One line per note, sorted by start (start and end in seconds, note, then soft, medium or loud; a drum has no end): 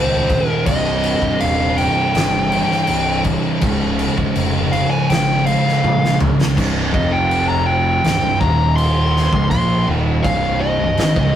0.00 0.38 C#2 loud
0.00 0.64 D#2 loud
0.00 0.65 D#2 medium
0.00 0.65 A#2 medium
0.00 0.66 D#3 loud
0.00 0.66 D#3 medium
0.00 0.49 C5 medium
0.30 kick medium
0.30 crash medium
0.49 0.66 A#4 medium
0.66 1.12 C1 medium
0.66 2.49 C2 medium
0.66 2.50 G2 loud
0.66 2.50 C3 loud
0.66 1.43 D#5 medium
0.66 kick loud
0.66 crash loud
1.03 crash medium
1.22 kick loud
1.41 1.86 D#1 loud
1.41 1.77 F5 loud
1.41 crash medium
1.78 3.21 G5 loud
1.78 crash medium
2.15 2.60 G1 loud
2.15 snare loud
2.15 crash medium
2.51 2.86 C2 medium
2.51 2.87 G2 medium
2.51 2.86 C3 medium
2.51 crash medium
2.72 snare soft
2.87 3.34 C1 medium
2.87 3.59 C2 medium
2.87 3.60 G2 medium
2.87 3.61 C3 medium
2.87 crash medium
3.24 kick loud
3.24 crash medium
3.61 4.07 C#1 medium
3.61 5.44 C#2 medium
3.61 5.45 G#2 medium
3.61 5.45 C#3 loud
3.61 kick loud
3.61 crash medium
3.99 crash medium
4.18 kick loud
4.35 4.81 F1 loud
4.35 crash medium
4.72 4.90 F5 medium
4.72 crash medium
4.91 5.09 G#5 loud
5.09 5.55 G#1 loud
5.09 5.46 G5 loud
5.09 snare loud
5.09 crash medium
5.46 5.81 C#2 medium
5.46 5.82 G#2 medium
5.46 5.81 C#3 medium
5.46 6.16 F5 loud
5.46 crash medium
5.68 snare soft
5.83 6.28 A#1 medium
5.83 6.54 C#2 medium
5.83 6.55 G#2 medium
5.83 6.56 C#3 medium
5.83 high tom medium
6.05 snare medium
6.21 mid tom loud
6.41 snare loud
6.57 6.91 C1 medium
6.57 6.93 C2 loud
6.57 6.93 G2 medium
6.57 6.93 C3 loud
6.57 kick loud
6.57 crash loud
6.57 crash medium
6.94 8.00 F1 loud
6.94 8.03 F2 medium
6.94 8.03 C3 loud
6.94 8.04 F3 loud
6.94 7.12 D#5 loud
6.94 kick loud
7.12 7.48 G5 medium
7.31 crash medium
7.49 7.66 A#5 medium
7.66 8.38 G5 medium
8.04 8.21 C1 medium
8.04 8.21 C2 medium
8.04 8.22 G2 medium
8.04 snare loud
8.04 crash medium
8.22 8.39 C1 medium
8.22 8.41 C2 medium
8.22 8.41 G2 medium
8.41 9.29 D#1 loud
8.41 9.32 D#2 medium
8.41 9.32 A#2 loud
8.41 9.32 D#3 loud
8.41 8.76 A#5 loud
8.41 kick loud
8.76 9.48 C6 medium
8.76 crash medium
9.17 snare soft
9.33 9.50 C#1 medium
9.33 9.50 C#2 medium
9.33 9.50 G#2 loud
9.33 kick loud
9.50 9.85 A#1 loud
9.50 9.87 A#2 loud
9.50 9.87 F3 loud
9.50 9.87 A#3 loud
9.50 9.86 C6 medium
9.50 kick loud
9.50 crash medium
9.88 10.22 D#1 loud
9.88 10.24 D#2 loud
9.88 10.24 A#2 loud
9.88 10.24 D#3 loud
10.23 10.76 C1 loud
10.23 10.78 C2 medium
10.23 10.79 G2 loud
10.23 10.79 C3 loud
10.23 10.59 F5 medium
10.23 kick loud
10.23 crash medium
10.60 11.36 D#5 loud
10.79 10.97 C1 medium
10.79 10.98 C2 medium
10.79 10.98 G2 medium
10.97 11.15 G#1 loud
10.97 11.15 G#2 medium
10.97 11.16 D#3 loud
10.97 snare loud
10.97 crash medium
11.16 11.33 C#1 loud
11.16 11.33 C#2 loud
11.16 11.34 G#2 loud
11.16 kick loud